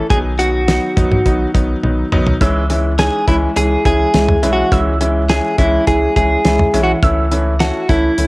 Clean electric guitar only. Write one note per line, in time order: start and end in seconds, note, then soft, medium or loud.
0.10 0.18 G#4 loud
0.39 1.50 F#4 medium
2.99 3.27 G#4 loud
3.28 3.36 E4 medium
3.57 3.85 G#4 loud
3.86 4.52 G#4 loud
4.53 4.80 F#4 medium
5.30 5.56 G#4 loud
5.59 5.87 E4 medium
5.87 6.14 G#4 loud
6.16 6.83 G#4 loud
6.83 6.91 F#4 medium
7.60 7.90 F#4 loud
7.89 8.27 E4 loud